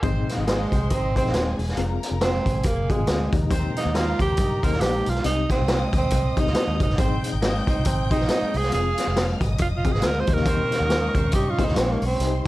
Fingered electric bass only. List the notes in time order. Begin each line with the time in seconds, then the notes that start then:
0.03 G#1
0.37 G#1
0.72 C2
0.91 G#1
1.24 A#1
1.33 D#1
1.59 E1
1.77 F1
2.11 F1
2.46 G#1
2.64 F1
2.99 G#1
3.08 D2
3.33 D#2
3.85 D#2
4.20 D#2
4.38 G2
4.63 D#2
4.81 A#1
5.07 B1
5.25 C2
5.59 C2
5.93 D#2
6.12 C2
6.37 muted fingered electric bass stroke
6.46 C#2
6.67 D#2
6.80 F#1
6.90 G1
6.98 G#1
7.33 G#1
7.67 C2
7.86 G#1
8.20 A#1
8.42 muted fingered electric bass stroke
8.54 C2
8.72 F1
9.07 F1
9.41 G#1
9.60 F1
9.94 G#1
10.03 D2
10.28 D#2
10.80 D#2
11.15 D#2
11.33 G2
11.68 D#2
11.76 A#1
12.02 B1
12.20 C2